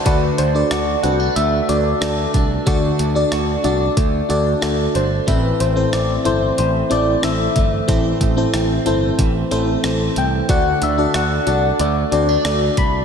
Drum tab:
HH |xxxxxxxx|xxxxxxxx|xxxxxxxx|xxxxxxxx|
SD |--r---r-|--r---r-|--r---r-|--r---r-|
BD |o------o|o---o---|o------o|oo--o---|

HH |xxxxxxxx|
SD |--r---r-|
BD |o------o|